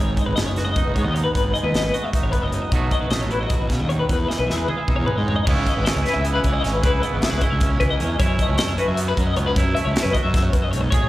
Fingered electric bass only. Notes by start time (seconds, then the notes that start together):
Already playing: G#1
0.27 G#1
0.37 F#1
0.85 F#1
0.96 G#2
1.05 D#2
1.35 G#1
1.63 D#2
1.73 G#1
2.22 G#1
2.41 F#1
2.72 B1
3.01 B1
3.10 A1
3.60 A1
3.70 B2
3.80 D#2
4.09 E2
4.39 B1
4.48 E2
4.98 E2
5.17 G#2
5.47 C#2
5.77 G#1
5.96 C#2
6.16 C#2
6.44 C#2
6.65 G#1
6.83 C#2
7.13 G#1
7.33 C#2
7.52 C#2
7.81 C#2
8.00 E2
8.20 F#2
8.49 C#2
8.69 F#2
8.88 F#2
9.17 F#2
9.36 C#2
9.57 F#2
9.86 C#2
10.05 F#2
10.24 F#2
10.53 F#2
10.73 B1
10.93 A1